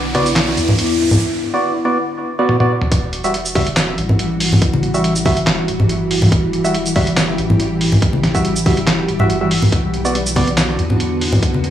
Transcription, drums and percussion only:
0.15 kick loud
0.15 closed hi-hat medium
0.15 high conga medium
0.26 closed hi-hat medium
0.26 shaker soft
0.36 snare loud
0.36 clap medium
0.36 closed hi-hat medium
0.57 closed hi-hat medium
0.57 shaker medium
0.68 low conga medium
0.79 closed hi-hat medium
1.11 low conga medium
1.11 shaker medium
2.49 high tom medium
2.60 high tom medium
2.82 mid tom medium
2.92 kick loud
2.92 closed hi-hat medium
3.13 closed hi-hat medium
3.24 shaker medium
3.34 closed hi-hat medium
3.45 shaker medium
3.55 kick loud
3.55 open hi-hat medium
3.55 high conga medium
3.67 closed hi-hat medium
3.77 snare loud
3.77 clap loud
3.77 closed hi-hat medium
3.77 shaker medium
3.98 closed hi-hat medium
4.09 low conga medium
4.19 closed hi-hat medium
4.40 open hi-hat medium
4.53 low conga medium
4.62 kick loud
4.62 closed hi-hat medium
4.73 high conga medium
4.83 closed hi-hat medium
4.94 shaker medium
5.04 closed hi-hat medium
5.15 shaker medium
5.25 kick loud
5.25 open hi-hat medium
5.25 high conga medium
5.37 closed hi-hat medium
5.47 snare loud
5.47 clap loud
5.47 closed hi-hat medium
5.68 closed hi-hat medium
5.80 low conga medium
5.89 closed hi-hat medium
6.11 open hi-hat medium
6.22 low conga loud
6.32 kick loud
6.32 closed hi-hat medium
6.53 closed hi-hat medium
6.65 shaker medium
6.75 closed hi-hat medium
6.86 shaker medium
6.96 kick loud
6.96 open hi-hat medium
6.96 high conga medium
7.07 closed hi-hat medium
7.17 snare loud
7.17 clap medium
7.17 closed hi-hat medium
7.17 shaker medium
7.38 closed hi-hat soft
7.50 low conga medium
7.60 closed hi-hat medium
7.81 open hi-hat medium
7.92 low conga medium
8.02 kick loud
8.02 closed hi-hat medium
8.13 high conga medium
8.23 snare medium
8.23 closed hi-hat soft
8.35 kick medium
8.35 shaker medium
8.45 closed hi-hat medium
8.56 shaker medium
8.66 kick loud
8.66 open hi-hat medium
8.66 high conga medium
8.77 closed hi-hat medium
8.87 snare loud
8.87 clap medium
8.87 closed hi-hat medium
9.08 closed hi-hat soft
9.19 low conga medium
9.30 closed hi-hat medium
9.51 open hi-hat medium
9.62 low conga medium
9.72 kick loud
9.72 closed hi-hat medium
9.94 closed hi-hat soft
10.05 shaker medium
10.15 closed hi-hat medium
10.26 shaker medium
10.36 kick loud
10.36 open hi-hat medium
10.36 high conga medium
10.48 closed hi-hat medium
10.58 snare loud
10.58 clap medium
10.58 closed hi-hat medium
10.58 shaker medium
10.79 closed hi-hat medium
10.90 low conga medium
11.00 closed hi-hat medium
11.21 open hi-hat medium
11.32 low conga medium
11.43 kick loud
11.43 closed hi-hat medium
11.54 high conga medium
11.64 closed hi-hat medium

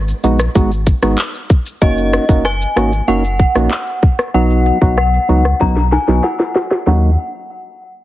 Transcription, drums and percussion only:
0.08 shaker medium
0.24 closed hi-hat medium
0.24 shaker medium
0.39 cross-stick loud
0.39 shaker medium
0.55 kick medium
0.55 shaker medium
0.71 shaker medium
0.87 kick medium
0.87 closed hi-hat medium
0.87 shaker medium
1.03 cross-stick medium
1.03 shaker medium
1.18 clap loud
1.18 shaker medium
1.34 shaker soft
1.50 kick loud
1.50 closed hi-hat medium
1.50 shaker soft
1.66 shaker medium
1.82 kick loud
1.82 shaker medium
1.97 shaker medium
2.13 cross-stick loud
2.13 closed hi-hat medium
2.13 shaker medium
2.29 kick loud
2.29 shaker medium
2.45 cross-stick medium
2.45 shaker medium
2.61 shaker medium
2.77 cross-stick loud
2.77 closed hi-hat medium
2.77 shaker medium
2.92 shaker medium
3.08 shaker medium
3.24 shaker medium
3.39 kick medium
3.39 closed hi-hat medium
3.39 shaker medium
3.55 cross-stick loud
3.55 shaker medium
3.71 clap medium
3.71 shaker medium
3.87 shaker soft
4.03 kick loud
4.03 closed hi-hat medium
4.03 shaker soft
4.19 cross-stick loud
4.19 shaker medium
4.35 shaker medium
4.50 shaker medium
4.66 closed hi-hat medium
4.66 shaker medium
4.82 kick loud
4.82 shaker medium
4.98 cross-stick medium
4.98 shaker medium
5.14 shaker medium
5.29 closed hi-hat medium
5.29 shaker medium
5.45 cross-stick loud
5.45 shaker medium
5.61 kick medium
5.61 snare medium
5.61 shaker medium
5.76 snare medium
5.76 shaker medium
5.92 snare medium
5.92 closed hi-hat medium
5.92 shaker medium
6.08 snare medium
6.08 shaker medium
6.24 snare medium
6.24 shaker medium
6.40 snare medium
6.40 shaker soft
6.55 snare loud
6.55 closed hi-hat medium
6.55 shaker soft
6.71 snare loud
6.71 shaker medium
6.87 snare loud

